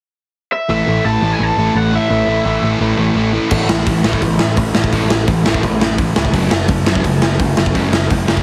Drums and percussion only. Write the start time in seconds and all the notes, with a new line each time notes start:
3.51 kick, crash
3.69 snare
3.87 kick, open hi-hat
4.04 snare
4.13 kick
4.22 kick, open hi-hat
4.39 snare
4.57 kick, open hi-hat
4.75 snare
4.84 kick
4.93 kick, open hi-hat
5.10 snare
5.28 kick, open hi-hat
5.46 snare
5.54 kick
5.63 kick, open hi-hat
5.81 snare
5.98 kick, open hi-hat
6.16 snare
6.25 kick
6.34 kick, open hi-hat
6.51 snare
6.68 kick, open hi-hat
6.86 snare
6.95 kick
7.04 kick, open hi-hat
7.22 snare
7.39 kick, open hi-hat
7.57 snare
7.66 kick
7.75 kick, open hi-hat
7.93 snare
8.10 kick, open hi-hat
8.28 snare
8.37 kick